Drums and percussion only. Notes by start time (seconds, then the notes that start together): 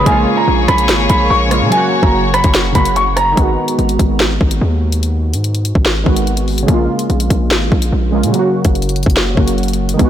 0.06 kick, closed hi-hat
0.68 kick, cross-stick, closed hi-hat
0.78 closed hi-hat
0.89 snare, closed hi-hat
1.10 kick, closed hi-hat
1.51 cross-stick, closed hi-hat
1.72 closed hi-hat
2.03 kick
2.34 cross-stick, closed hi-hat
2.44 kick, closed hi-hat
2.55 snare, closed hi-hat
2.75 kick, closed hi-hat
2.85 closed hi-hat
2.96 closed hi-hat
3.17 cross-stick, closed hi-hat
3.37 kick, closed hi-hat
3.68 closed hi-hat
3.79 closed hi-hat
3.89 closed hi-hat
3.99 kick, closed hi-hat
4.20 snare
4.41 kick
4.51 closed hi-hat
4.92 closed hi-hat
5.03 closed hi-hat
5.34 closed hi-hat
5.44 closed hi-hat
5.55 closed hi-hat
5.65 closed hi-hat
5.75 kick
5.86 snare
6.06 kick
6.16 closed hi-hat
6.27 closed hi-hat
6.37 closed hi-hat
6.48 open hi-hat
6.58 closed hi-hat
6.68 kick, closed hi-hat
6.99 closed hi-hat
7.10 closed hi-hat
7.20 closed hi-hat
7.30 kick, closed hi-hat
7.51 snare
7.72 kick
7.82 closed hi-hat
8.23 closed hi-hat
8.34 closed hi-hat
8.65 kick, closed hi-hat
8.75 closed hi-hat
8.82 closed hi-hat
8.89 closed hi-hat
8.96 closed hi-hat
9.03 kick, closed hi-hat
9.10 closed hi-hat
9.17 snare
9.37 kick
9.48 closed hi-hat
9.58 closed hi-hat
9.63 closed hi-hat
9.68 closed hi-hat
9.73 closed hi-hat
9.89 closed hi-hat
9.99 kick, closed hi-hat